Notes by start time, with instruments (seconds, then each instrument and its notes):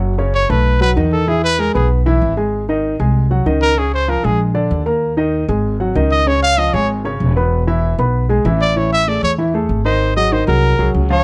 Already playing: upright bass F#1, upright piano F#3 F#4 F#5
0.18 upright piano C#3 C#4 C#5
0.34 trumpet C#5
0.49 upright bass B1, upright piano A3 A4 A5, trumpet B4
0.81 upright piano F#3 F#4 F#5, trumpet B4
0.96 upright bass E2, upright piano D#3 D#4 D#5
1.12 trumpet A4
1.27 upright piano E3 E4 E5, trumpet G#4
1.44 trumpet B4
1.59 upright piano G#3 G#4 G#5, trumpet A#4
1.74 upright bass B1, upright piano B3 B4 B5, trumpet G#4
2.06 upright piano E3 E4 E5
2.22 upright bass G#1
2.37 upright piano G#3 G#4 G#5
2.69 upright piano D#3 D#4 D#5
3.00 upright bass C2, upright piano G#3 G#4 G#5
3.31 upright piano F#3 F#4 F#5
3.46 upright bass C#2, upright piano D#3 D#4 D#5
3.62 trumpet A#4
3.77 upright piano C#3 C#4 C#5, trumpet G#4
3.94 trumpet C5
4.08 upright piano F3 F4 F5, trumpet A#4
4.23 upright bass A#1, upright piano G#3 G#4 G#5, trumpet G#4
4.54 upright piano D3 D4 D5
4.71 upright bass D#2
4.86 upright piano A#3 A#4 A#5
5.17 upright piano D#3 D#4 D#5
5.48 upright bass G#1, upright piano G#3 G#4 G#5
5.80 upright piano F#3 F#4 F#5
5.95 upright bass C#2, upright piano D#3 D#4 D#5
6.11 trumpet D#5
6.27 upright piano C#3 C#4 C#5, trumpet C#5
6.43 trumpet F5
6.58 upright piano F3 F4 F5, trumpet D#5
6.74 upright bass G#1, upright piano G#3 G#4 G#5, trumpet C#5
7.05 upright piano C#3 C#4 C#5
7.20 upright bass E1
7.36 upright piano B3 B4 B5
7.67 upright piano E3 E4 E5
7.98 upright bass B1, upright piano B3 B4 B5
8.29 upright piano G#3 G#4 G#5
8.45 upright bass A1, upright piano E3 E4 E5
8.61 trumpet D5
8.76 upright piano E3 E4 E5, trumpet C#5
8.92 trumpet E5
9.07 upright piano A3 G#4 A4, trumpet D5
9.22 upright bass E2, trumpet C#5
9.38 upright piano E3 E4 E5
9.54 upright piano A3 G#4 A4
9.69 upright bass G#1
9.85 upright piano D#3 D#4 D#5, trumpet C5
10.17 upright piano F#3 F#4 G#4, trumpet D#5
10.32 upright piano D#3 D#4 D#5, trumpet C5
10.47 upright bass C2, upright piano F#3 F#4 G#4, trumpet A#4
10.79 upright bass C2, upright piano F#3 F#4 G#4
10.94 upright bass C#2
11.10 upright piano F3 F4 F5, trumpet C#5